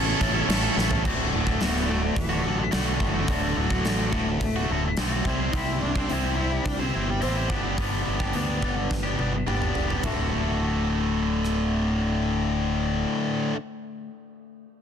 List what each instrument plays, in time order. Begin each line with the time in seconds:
Already playing: fingered electric bass A1, cello C#4
0.06 distorted electric guitar A3 C#4 E4 A4
0.20 fingered electric bass A1, distorted electric guitar A3 C#4 E4 A4, kick, crash
0.33 distorted electric guitar A3 C#4 E4 A4
0.47 fingered electric bass A1, distorted electric guitar A2 E3 A3 C#4 E4 A4, snare, crash
0.62 distorted electric guitar A3 C#4 E4 A4
0.75 fingered electric bass A1, distorted electric guitar A3 C#4 E4 A4, snare
0.89 distorted electric guitar A3 C#4 E4 A4, floor tom
1.03 fingered electric bass D1, distorted electric guitar D2 A2 D3 A3 F#4, kick, crash
1.33 fingered electric bass D1, steel-string acoustic guitar A2, cello A3
1.44 distorted electric guitar D3 A3 F#4, kick
1.59 fingered electric bass D1, distorted electric guitar D2 A2 D3 A3 F#4, cello B3, snare, open hi-hat
1.76 snare
1.88 distorted electric guitar A2 D3 A3 F#4, cello A3
2.03 muted distorted electric guitar stroke
2.16 fingered electric bass D1, cello E3, steel-string acoustic guitar A3, kick, open hi-hat
2.29 distorted electric guitar D3 A3 F#4
2.45 fingered electric bass A1, distorted electric guitar A2 D3 A3 F#4, cello F#3
2.59 muted distorted electric guitar stroke
2.71 fingered electric bass B1, distorted electric guitar D2 A2 D3 A3 F#4, cello D3, snare, open hi-hat
2.86 distorted electric guitar D3 A3 F#4
3.00 fingered electric bass F#1, cello E3, steel-string acoustic guitar A3, kick
3.14 distorted electric guitar D3 A3 F#4
3.21 cello C#3
3.28 fingered electric bass D1, distorted electric guitar D2 A2 D3 A3 F#4, cello D3, kick, open hi-hat
3.56 fingered electric bass D1, steel-string acoustic guitar A2, cello F#3
3.70 distorted electric guitar A3 F#4, kick
3.75 distorted electric guitar D3
3.85 fingered electric bass A1, distorted electric guitar D2 A2 D3 A3, snare, open hi-hat
3.90 distorted electric guitar F#4
4.12 fingered electric bass D1, distorted electric guitar A2 D3 A3, cello A3, steel-string acoustic guitar F#4, kick
4.16 distorted electric guitar F#4
4.29 muted distorted electric guitar stroke
4.41 fingered electric bass D1, steel-string acoustic guitar A3, cello A3, kick, open hi-hat
4.56 distorted electric guitar D3 A3 F#4
4.69 fingered electric bass D1, distorted electric guitar A2 D3 A3 F#4
4.84 muted distorted electric guitar stroke
4.97 fingered electric bass B1, distorted electric guitar D2 A2 D3 A3, steel-string acoustic guitar F#4, snare, open hi-hat
5.01 distorted electric guitar F#4
5.12 distorted electric guitar D3 A3 F#4
5.25 fingered electric bass C2, distorted electric guitar C3 G3 C4 E4 G4 C5, kick
5.39 distorted electric guitar C4 E4 G4 C5
5.49 cello D#4
5.53 fingered electric bass C2, distorted electric guitar C3 G3 C4 E4 G4 C5, cello E4, kick, open hi-hat
5.81 fingered electric bass C2, steel-string acoustic guitar C4, cello D4
5.95 distorted electric guitar C4 E4 G4 C5, kick
6.09 fingered electric bass C2, distorted electric guitar C3 G3 C4, cello C4, steel-string acoustic guitar E4, open hi-hat
6.13 distorted electric guitar E4 G4 C5
6.35 distorted electric guitar C4 E4, cello E4
6.40 distorted electric guitar G4 C5
6.53 muted distorted electric guitar stroke
6.64 fingered electric bass C2, cello D4, steel-string acoustic guitar G4, kick, open hi-hat
6.80 cello C4, distorted electric guitar C4 E4 G4 C5
6.94 fingered electric bass G1, distorted electric guitar C4 E4 G4 C5
7.01 cello B3
7.09 muted distorted electric guitar stroke
7.20 fingered electric bass A1, distorted electric guitar C3 G3 C4 E4 G4 C5, open hi-hat
7.34 distorted electric guitar C4 E4 G4 C5
7.48 fingered electric bass G1, distorted electric guitar G2 D3 G3 B3 D4 G4, kick
7.63 distorted electric guitar G3 B3 D4 G4
7.76 fingered electric bass G1, distorted electric guitar G2 D3 G3 B3 D4 G4, kick, open hi-hat
8.06 fingered electric bass G1, steel-string acoustic guitar G3
8.19 distorted electric guitar G3 B3 D4 G4, kick
8.33 fingered electric bass D2, distorted electric guitar G2 D3 G3 B3 D4 G4, open hi-hat
8.62 fingered electric bass G1, distorted electric guitar G3 B3 D4 G4, kick
8.76 muted distorted electric guitar stroke
8.90 fingered electric bass G1, steel-string acoustic guitar D4, kick, snare
9.03 distorted electric guitar G3 B3 D4 G4
9.18 fingered electric bass G1, distorted electric guitar G3 B3 D4 G4, high tom
9.33 muted distorted electric guitar stroke
9.47 fingered electric bass G1, distorted electric guitar G2 D3 G3 B3 D4 G4, mid tom
9.60 distorted electric guitar G3 B3 D4 G4, mid tom
9.74 fingered electric bass E1, steel-string acoustic guitar D4, floor tom
9.88 distorted electric guitar G3 B3 D4 G4, floor tom
10.02 fingered electric bass D1, distorted electric guitar D2 A2 D3 A3 F#4, kick, ride
11.44 cross-stick